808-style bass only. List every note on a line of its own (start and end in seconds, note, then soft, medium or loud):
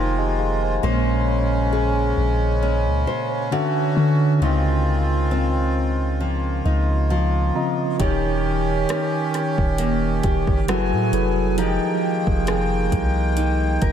0.00 0.79 F1 loud
0.83 2.13 A#1 loud
2.17 2.88 A#1 loud
2.86 3.06 C#2 loud
3.97 4.40 D3 loud
4.41 6.61 C#2 loud
6.65 7.51 C#2 loud
8.00 8.86 D#1 loud
9.58 10.21 D#1 loud
10.24 10.47 D#1 loud
10.47 10.94 F#1 loud
10.92 11.12 A2 medium
11.13 11.79 F1 loud
12.27 12.90 F1 loud
12.92 13.78 C2 loud
13.82 13.92 F1 loud